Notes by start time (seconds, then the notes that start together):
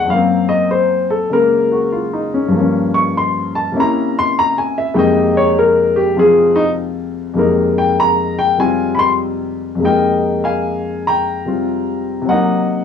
0.05 F#2 F#3
0.10 A#3 F5
0.15 C4
0.49 D#5
0.71 C5
1.10 A4
1.30 C#3 G#3 A#3 A#4
1.72 F#4
1.92 F4
2.13 D#4
2.34 C#4
2.48 G2
2.52 F3 A#3
2.60 C#4
2.94 C#6
3.17 C6
3.55 A5
3.72 C3 A#3 C#4
3.77 E4 A#5
4.19 C6
4.39 A#5
4.58 G#5
4.78 E5
4.94 F2 C3 G#3 A#3 D#4 G5
4.99 D#5
5.37 C#5
5.59 A#4
5.96 G4
6.16 C3 F3 C4 F4 G#4
6.56 D#4
7.33 F2 C3 G#3 A#3
7.38 D#4 A#4
7.78 G5
8.00 A#5
8.39 G5
8.58 C3 G3 C4 F4 G#5
8.95 B5
8.99 C6
9.75 F2 C3
9.80 G#3 A#3
9.85 D#4 A#4 D#5 G5
10.44 F5 G#5
11.07 G5 A#5
11.45 C3 G3 C4 F4
12.22 C3 F#3
12.29 A#3 D#4 D#5 F#5